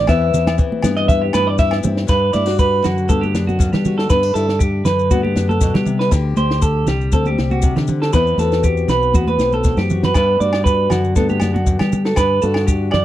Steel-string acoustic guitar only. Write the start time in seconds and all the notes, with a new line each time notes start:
0.07 E2 E3 B3 C4 E4
0.58 E3
0.83 B3
1.33 E2
1.59 E4
1.83 C4
2.07 G2 D4
2.33 E4
2.46 F#4
2.82 D3
3.08 B3
3.34 D4
3.59 G2
3.86 F#4
4.10 B3
4.23 D4
4.35 E4
4.49 muted steel-string acoustic guitar stroke
4.85 D3
5.11 B3
5.36 D4
5.61 B2
5.85 C3
6.11 D3 G4
6.37 G4
6.88 G3
7.13 C4
7.39 G4
7.63 C3
7.88 D3
8.13 E2 E3 B3 C4 E4
8.39 F#4
8.89 E3
9.16 B3
9.41 C4
9.65 E2
9.91 F#4
10.15 G2 D4
10.42 F#4
10.91 D3
11.16 B3
11.41 D4
11.66 G2
12.05 F#4
12.18 D4
12.43 F#4
12.94 D3